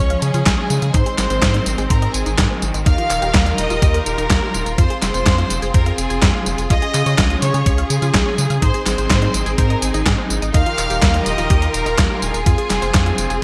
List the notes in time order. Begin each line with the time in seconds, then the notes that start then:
Already playing: F3 G#3 C#4 C#5 C#6
0.00 C#2
0.10 F5, closed hi-hat
0.22 C#3 G#4 G#5, closed hi-hat, tambourine
0.34 C#3 F4, closed hi-hat, tambourine
0.46 C#2 G#4, kick, snare, clap, closed hi-hat, tambourine
0.58 C#5
0.70 C#3, closed hi-hat, tambourine
0.82 C#3 F5, closed hi-hat, tambourine
0.94 G#2 D#3 C4 D#4 C5 C6, kick, closed hi-hat, tambourine
1.06 G#4, closed hi-hat
1.18 G#1 C5 C6, snare, clap, closed hi-hat, tambourine
1.30 G#1 C5, closed hi-hat, tambourine
1.42 G#2 D#5, kick, snare, clap, closed hi-hat, tambourine
1.54 D#4, closed hi-hat
1.66 G#1, closed hi-hat, tambourine
1.78 G#1 G#4, closed hi-hat, tambourine
1.90 G#2 A#4 C5 A#5, kick, closed hi-hat, tambourine
2.02 D#5, closed hi-hat
2.14 G#1 G#4 G#5, closed hi-hat, tambourine
2.26 G#1 D#4, closed hi-hat, tambourine
2.38 G#2 G#4, kick, snare, clap, closed hi-hat, tambourine
2.50 C5
2.62 G#1, closed hi-hat, tambourine
2.74 G#1 D#5, closed hi-hat, tambourine
2.86 D#2 D#4 F4 G4 A#4 F5 F6, kick, closed hi-hat, tambourine
2.98 F4, closed hi-hat
3.10 D#1, clap, closed hi-hat, tambourine
3.22 D#1 G4, closed hi-hat, tambourine
3.34 D#2 A#4, kick, snare, clap, closed hi-hat, tambourine
3.46 D#4, closed hi-hat
3.58 D#1 D#5 D#6, closed hi-hat, tambourine
3.70 D#1 F4, closed hi-hat, tambourine
3.82 D#2 G4, kick, closed hi-hat, tambourine
3.94 A#4, closed hi-hat
4.06 D#1 A#4 A#5, closed hi-hat, tambourine
4.18 D#1 D#4, closed hi-hat, tambourine
4.30 D#2 F4, kick, snare, clap, closed hi-hat, tambourine
4.42 G4
4.54 D#1, closed hi-hat, tambourine
4.66 D#1 A#4, closed hi-hat, tambourine
4.78 F2 C4 F4 G#4 C5 C6, kick, closed hi-hat, tambourine
4.90 G#4, closed hi-hat
5.02 F1 C5 C6, snare, clap, closed hi-hat, tambourine
5.14 F1 C5, closed hi-hat, tambourine
5.26 F2 F5, kick, snare, clap, closed hi-hat, tambourine
5.38 F4, closed hi-hat
5.50 F1, closed hi-hat, tambourine
5.62 F1 G#4, closed hi-hat, tambourine
5.74 F2 A#4 C5 A#5, kick, closed hi-hat, tambourine
5.86 F5, closed hi-hat
5.98 F1 G#4 G#5, closed hi-hat, tambourine
6.10 F1 G#5, closed hi-hat, tambourine
6.22 F2 C6, kick, snare, clap, closed hi-hat, tambourine
6.34 F5
6.46 F1, closed hi-hat, tambourine
6.58 F1 G#5, closed hi-hat, tambourine
6.70 C#2 C#4 F4 D#5 D#6, kick, closed hi-hat, tambourine
6.82 G#4, closed hi-hat
6.94 C#3, clap, closed hi-hat, tambourine
7.06 C#3 C#5, closed hi-hat, tambourine
7.18 C#2 F5, kick, snare, clap, closed hi-hat, tambourine
7.30 F4, closed hi-hat
7.42 C#3 C#5 C#6, closed hi-hat, tambourine
7.54 C#3 G#4, closed hi-hat, tambourine
7.66 C#2 C#5, kick, closed hi-hat, tambourine
7.78 F5, closed hi-hat
7.90 C#3 G#4 G#5, closed hi-hat, tambourine
8.02 C#3 F4, closed hi-hat, tambourine
8.14 C#2 G#4, kick, snare, clap, closed hi-hat, tambourine
8.26 C#5
8.38 C#3, closed hi-hat, tambourine
8.50 C#3 F5, closed hi-hat, tambourine
8.62 G#2 C4 D#4 C5 C6, kick, closed hi-hat, tambourine
8.74 G#4, closed hi-hat
8.86 G#1 C5 C6, snare, clap, closed hi-hat, tambourine
8.98 G#1 C5, closed hi-hat, tambourine
9.10 G#2 D#5, kick, snare, clap, closed hi-hat, tambourine
9.22 D#4, closed hi-hat
9.34 G#1, closed hi-hat, tambourine
9.46 G#1 G#4, closed hi-hat, tambourine
9.58 G#2 A#4 C5 A#5, kick, closed hi-hat, tambourine
9.70 D#5, closed hi-hat
9.82 G#1 G#4 G#5, closed hi-hat, tambourine
9.94 G#1 D#4, closed hi-hat, tambourine
10.06 G#2 G#4, kick, snare, clap, closed hi-hat, tambourine
10.18 C5
10.30 G#1, closed hi-hat, tambourine
10.42 G#1 D#5, closed hi-hat, tambourine
10.54 D#2 D#3 D#4 F4 G4 A#4 F5 F6, kick, closed hi-hat, tambourine
10.66 F4, closed hi-hat
10.78 D#1, clap, closed hi-hat, tambourine
10.90 D#1 G4, closed hi-hat, tambourine
11.02 D#2 A#4, kick, snare, clap, closed hi-hat, tambourine
11.14 D#4, closed hi-hat
11.26 D#1 D#5 D#6, closed hi-hat, tambourine
11.38 D#1 F4, closed hi-hat, tambourine
11.50 D#2 G4, kick, closed hi-hat, tambourine
11.62 A#4, closed hi-hat
11.74 D#1 A#4 A#5, closed hi-hat, tambourine
11.86 D#1 D#4, closed hi-hat, tambourine
11.98 D#2 F4, kick, snare, clap, closed hi-hat, tambourine
12.10 G4
12.22 D#1 G#4 G#5, closed hi-hat, tambourine
12.34 D#1 A#4, closed hi-hat, tambourine
12.46 F2 C4 F4 G#4, kick, closed hi-hat, tambourine
12.58 G#4, closed hi-hat
12.70 F1, snare, clap, closed hi-hat, tambourine
12.82 F1 C5, closed hi-hat, tambourine
12.94 F2 F5, kick, snare, clap, closed hi-hat, tambourine
13.06 F4, closed hi-hat
13.18 F1, closed hi-hat, tambourine
13.30 F1 G#4, closed hi-hat, tambourine